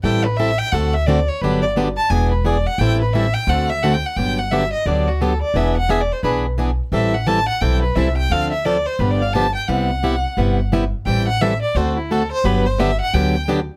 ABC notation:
X:1
M:4/4
L:1/16
Q:"Swing" 1/4=174
K:G
V:1 name="Violin"
g2 B2 e2 g2 f2 e2 d2 ^c2 | B2 d2 z2 a2 ^g2 B2 d2 f2 | g2 B2 e2 g2 f2 e2 (3f2 g2 f2 | g2 f2 e2 _e2 d2 F2 A2 d2 |
e2 f2 (3e2 d2 c2 B2 z6 | e2 f2 a2 f2 g2 B2 e2 g2 | =f2 e2 d2 c2 (3B2 d2 f2 a2 g2 | f12 z4 |
g2 f2 e2 d2 c2 E2 A2 c2 | B2 c2 e2 f2 g4 z4 |]
V:2 name="Steel-string acoustic guitar"
[E,G,CEA]2 z2 [E,G,CEA] z3 [D,A,CFA]2 z2 [D,A,CFA] z3 | [D,F,B,DG]2 z2 [D,F,B,DG] z3 [E,B,D^G]2 z2 [E,B,DG] z3 | [E,G,CEA]2 z2 [E,G,CEA] z3 [D,A,CFA]2 z2 [D,A,CFA] z3 | [D,F,B,DG]2 z2 [D,F,B,DG] z3 [D,F,B,DG]2 z2 [D,F,B,DG] z3 |
[E,B,D^G]2 z2 [E,B,DG] z3 [E,B,DG]2 z2 [E,B,DG] z3 | [E,G,CEA]2 z2 [E,G,CEA] z3 [E,G,CEA]2 z2 [E,G,CEA] z3 | [D,=F,CDA]2 z2 [D,F,CDA] z3 [D,F,B,DG]2 z2 [D,F,B,DG] z3 | [C,G,B,EG]2 z2 [C,G,B,EG] z3 [C,G,B,EG]2 z2 [C,G,B,EG] z3 |
[E,G,CEA]2 z2 [E,G,CEA] z3 [D,A,CFA]2 z2 [D,A,CFA] z3 | [D,F,B,DG]2 z2 [D,F,B,DG] z3 [D,F,B,DG]2 z2 [D,F,B,DG] z3 |]
V:3 name="Upright bass" clef=bass
A,,,8 D,,8 | G,,,8 E,,,8 | A,,,8 D,,8 | G,,,8 D,,8 |
E,,,8 B,,,8 | A,,,8 B,,,4 C,,4 | D,,8 G,,,8 | C,,8 G,,,8 |
A,,,8 D,,8 | G,,,8 D,,8 |]